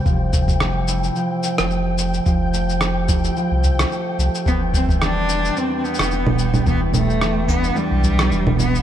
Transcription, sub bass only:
X:1
M:4/4
L:1/16
Q:"Swing 16ths" 1/4=109
K:Flyd
V:1 name="Sub bass" clef=bass
F,,,8 z3 F,,,4- F,,, | F,,,8 z C,,3 z2 C,, z | E,,,8 z3 E,,,4- E,,, | E,,,8 z B,,,3 E,,,4 |]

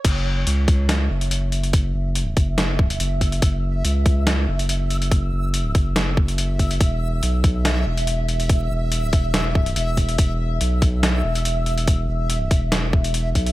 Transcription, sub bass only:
X:1
M:4/4
L:1/8
Q:"Swing 16ths" 1/4=142
K:Emix
V:1 name="Sub bass" clef=bass
F,,,2 C,,3 F,,,3- | F,,, F,,,2 F,,,3 F,,,2 | F,,,2 C,,3 F,,,3- | F,,, F,,,2 F,,,4- F,,, |
E,,,2 B,,,3 E,,,3- | E,,, E,,,2 E,,,3 E,,,2 | E,,,2 B,,,3 E,,,3- | E,,, E,,,2 E,,,4 B,,, |]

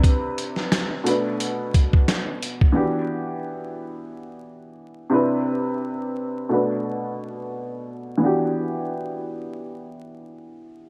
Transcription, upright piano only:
X:1
M:4/4
L:1/8
Q:"Swing 16ths" 1/4=88
K:Em
V:1 name="Upright piano"
[C,CDEB]3 [B,,A,DFB]4- [B,,A,DFB] | [E,B,DFG]6- [E,B,DFG] [C,CDEB]- | [C,CDEB]3 [B,,A,DFB]4- [B,,A,DFB] | [E,B,DFG]8 |]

